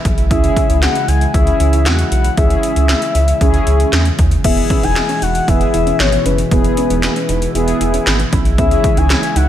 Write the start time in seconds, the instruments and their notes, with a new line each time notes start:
Already playing: analog synth pad B2 E3 G#3 E4
0.05 analog synth bass B1, kick, closed hi-hat
0.18 closed hi-hat
0.31 analog synth bass C#2, analog synth pad C#3, analog polysynth C#4 E4 G#4, soft synth lead E5, kick, closed hi-hat
0.44 closed hi-hat
0.57 kick, closed hi-hat
0.70 analog synth bass C#2, closed hi-hat
0.82 soft synth lead F#5, snare, clap, closed hi-hat
0.95 closed hi-hat
1.08 analog synth bass C#2, soft synth lead G#5, closed hi-hat
1.21 closed hi-hat
1.34 analog synth bass C#2, analog polysynth C#4 E4 G#4, soft synth lead E5, kick, closed hi-hat
1.47 closed hi-hat
1.60 analog synth bass C#2, closed hi-hat
1.73 closed hi-hat
1.86 analog synth bass E2, soft synth lead F#5, snare, clap, closed hi-hat
1.99 closed hi-hat
2.12 analog synth bass B1, soft synth lead F#5, closed hi-hat
2.24 closed hi-hat
2.37 analog synth bass C#2, analog polysynth C#4 E4 G#4, soft synth lead E5, kick, closed hi-hat
2.50 closed hi-hat
2.63 closed hi-hat
2.76 analog synth bass C#2, closed hi-hat
2.89 snare, clap, closed hi-hat
3.02 closed hi-hat
3.15 analog synth bass C#2, closed hi-hat
3.28 closed hi-hat
3.41 analog synth bass C#2, analog polysynth C#4 E4 G#4, kick, closed hi-hat
3.54 closed hi-hat
3.67 analog synth bass C#2, closed hi-hat
3.80 closed hi-hat
3.93 analog synth bass E2, snare, clap, closed hi-hat
4.05 closed hi-hat
4.19 analog synth bass D#2, kick, closed hi-hat
4.31 closed hi-hat
4.44 analog synth bass E1, analog synth pad B2 E3 G#3 E4, synth arpeggio sound B3, analog polysynth B3 E4 G#4, soft synth lead E5, kick, closed hi-hat, crash
4.57 closed hi-hat
4.70 synth arpeggio sound C#4, kick, closed hi-hat
4.83 analog synth bass E1, synth arpeggio sound D#4, soft synth lead G#5, closed hi-hat
4.96 snare, clap, closed hi-hat
5.09 synth arpeggio sound C#4, closed hi-hat
5.22 analog synth bass E1, synth arpeggio sound D#4, soft synth lead F#5, closed hi-hat
5.35 closed hi-hat
5.48 analog synth bass E1, analog polysynth B3 E4 G#4, synth arpeggio sound E4, soft synth lead E5, kick, closed hi-hat
5.61 closed hi-hat
5.74 analog synth bass E1, synth arpeggio sound E4, closed hi-hat
5.87 synth arpeggio sound C#4, closed hi-hat
6.00 analog synth bass G#1, soft synth lead C#5, snare, clap, closed hi-hat
6.12 synth arpeggio sound B3, closed hi-hat
6.26 analog synth bass F#1, synth arpeggio sound C#4, soft synth lead B4, closed hi-hat
6.38 closed hi-hat
6.51 analog synth bass E1, synth arpeggio sound B3, analog polysynth B3 E4 G#4, soft synth lead B4, kick, closed hi-hat
6.64 closed hi-hat
6.77 synth arpeggio sound C#4, closed hi-hat
6.90 analog synth bass E1, synth arpeggio sound D#4, closed hi-hat
7.03 snare, clap, closed hi-hat
7.16 synth arpeggio sound C#4, closed hi-hat
7.29 analog synth bass E1, synth arpeggio sound D#4, closed hi-hat
7.42 closed hi-hat
7.55 analog synth bass E1, analog polysynth B3 E4 G#4, synth arpeggio sound E4, closed hi-hat
7.68 closed hi-hat
7.81 analog synth bass E1, synth arpeggio sound E4, closed hi-hat
7.94 synth arpeggio sound C#4, closed hi-hat
8.07 analog synth bass G#1, snare, clap, closed hi-hat
8.19 synth arpeggio sound B3, closed hi-hat
8.33 analog synth bass B1, synth arpeggio sound C#4, kick, closed hi-hat
8.45 closed hi-hat
8.58 analog synth bass C#2, analog synth pad C#3 E3, synth arpeggio sound B3, analog polysynth C#4 E4 G#4, soft synth lead E5, kick, closed hi-hat
8.71 closed hi-hat
8.84 synth arpeggio sound C#4, kick, closed hi-hat
8.97 analog synth bass C#2, synth arpeggio sound D#4, soft synth lead G#5, closed hi-hat
9.10 snare, clap, closed hi-hat
9.23 synth arpeggio sound C#4, closed hi-hat
9.36 analog synth bass C#2, synth arpeggio sound D#4, soft synth lead F#5, closed hi-hat